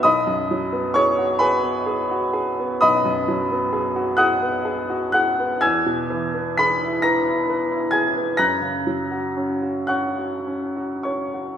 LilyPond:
\new Staff \with { instrumentName = "Upright piano" } { \time 12/8 \key gis \minor \tempo 4. = 42 << { <dis'' b'' dis'''>4 <cis'' cis'''>8 <b' gis'' b''>4. <dis'' b'' dis'''>4. <fis'' dis''' fis'''>4 <fis'' fis'''>8 | <gis'' e''' gis'''>4 <b'' b'''>8 <ais'' ais'''>4 <gis'' gis'''>8 <ais'' fis''' ais'''>4. <fis'' cis''' fis'''>4 <cis'' cis'''>8 | } \\ { b,,16 fis,16 fis16 b16 gis'16 fis'16 gis'16 b16 gis'16 fis'16 gis'16 b16 b,,16 fis,16 fis16 b16 gis'16 fis'16 gis'16 b16 gis'16 fis'16 gis'16 b16 | e,16 b,16 e16 b16 gis'16 e'16 b'16 e'16 b'16 e'16 gis'16 b16 fis,16 cis16 fis16 fis'16 cis'16 fis'16 cis'16 fis'16 cis'16 fis'16 cis'16 fis'16 | } >> }